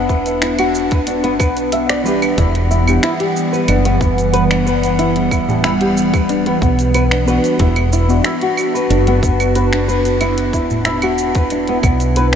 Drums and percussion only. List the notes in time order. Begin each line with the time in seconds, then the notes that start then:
0.09 kick, shaker
0.26 closed hi-hat, shaker
0.42 finger snap, closed hi-hat, shaker
0.59 closed hi-hat, claves
0.75 shaker
0.91 kick, closed hi-hat, shaker
1.07 closed hi-hat, shaker
1.24 closed hi-hat
1.40 kick, claves, shaker
1.57 closed hi-hat, shaker
1.72 closed hi-hat, shaker
1.89 finger snap, closed hi-hat
2.06 shaker
2.22 closed hi-hat, claves, shaker
2.38 kick, closed hi-hat, tabla tin, shaker
2.55 closed hi-hat
2.71 shaker
2.88 claves, shaker
3.03 finger snap, closed hi-hat, tabla na, shaker
3.20 closed hi-hat
3.36 shaker
3.53 tabla tin, shaker
3.68 closed hi-hat, claves, shaker
3.85 closed hi-hat
4.01 kick, shaker
4.18 closed hi-hat, shaker
4.34 closed hi-hat, shaker
4.51 finger snap, closed hi-hat, claves
4.67 shaker
4.83 closed hi-hat, shaker
4.99 closed hi-hat, tabla tin, shaker
5.16 closed hi-hat
5.31 kick, claves, shaker
5.49 tabla ge, shaker
5.64 finger snap, closed hi-hat, tabla na, shaker
5.81 closed hi-hat
5.97 shaker
6.14 kick, closed hi-hat, tabla tin, claves, shaker
6.29 closed hi-hat, shaker
6.46 closed hi-hat
6.62 kick, shaker
6.79 closed hi-hat, shaker
6.94 closed hi-hat, claves, shaker
7.11 finger snap, closed hi-hat
7.28 shaker
7.44 closed hi-hat, tabla tin, shaker
7.59 kick, closed hi-hat, tabla tin, shaker
7.76 closed hi-hat, claves
7.92 tabla tin, shaker
8.09 shaker
8.24 finger snap, closed hi-hat, tabla na, shaker
8.41 closed hi-hat
8.57 claves, shaker
8.74 tabla tin, shaker
8.91 closed hi-hat, shaker
9.07 closed hi-hat
9.23 kick, shaker
9.40 closed hi-hat, claves, shaker
9.55 closed hi-hat, shaker
9.73 finger snap, closed hi-hat
9.89 shaker
10.05 closed hi-hat, shaker
10.20 closed hi-hat, tabla tin, claves, shaker
10.38 closed hi-hat
10.53 kick, tabla na, tabla tin, shaker
10.70 tabla ge, shaker
10.85 finger snap, closed hi-hat, tabla na, shaker
11.02 closed hi-hat, claves
11.18 shaker
11.35 kick, closed hi-hat, tabla tin, shaker
11.50 closed hi-hat, shaker
11.68 closed hi-hat
11.83 kick, claves, shaker
12.00 closed hi-hat, shaker
12.16 closed hi-hat, shaker